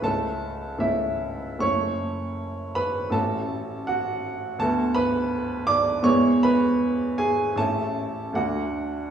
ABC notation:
X:1
M:2/4
L:1/8
Q:1/4=79
K:A
V:1 name="Upright piano"
[Aa]2 [Ee]2 | [cc']3 [Bb] | [Aa]2 [Ff] z | [Aa] [Bb]2 [dd'] |
[cc'] [Bb]2 [Gg] | [Aa]2 [Ff]2 |]
V:2 name="Upright piano"
[C,,A,CE]2 [C,,A,C]2 | [F,,,A,CE]4 | [A,,,A,CF]4 | [D,,A,B,F]4 |
[E,,G,B,E]4 | [A,,,A,CE]2 [D,,A,D]2 |]